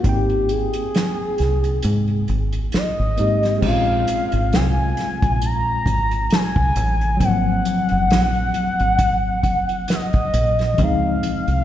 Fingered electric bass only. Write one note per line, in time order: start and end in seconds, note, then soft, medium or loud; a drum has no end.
0.05 0.70 G#1 loud
1.40 1.80 C2 medium
1.85 2.25 G#2 loud
2.29 2.70 G#1 medium
2.75 muted fingered electric bass stroke soft
2.99 3.17 G#1 medium
3.19 3.60 G#2 medium
3.63 4.04 A#1 medium
4.33 4.51 G#1 medium
4.54 4.94 C2 medium
5.23 5.83 A#1 medium
5.86 6.27 G#1 medium
6.57 6.75 C2 medium
6.76 7.17 A1 medium
7.21 7.62 G#1 medium
7.91 8.11 F#1 medium
8.11 8.52 A#1 medium
8.80 9.44 G#1 medium
9.44 9.85 F#1 medium
10.34 10.75 A#1 medium
10.79 11.20 C#2 loud
11.48 11.64 C2 medium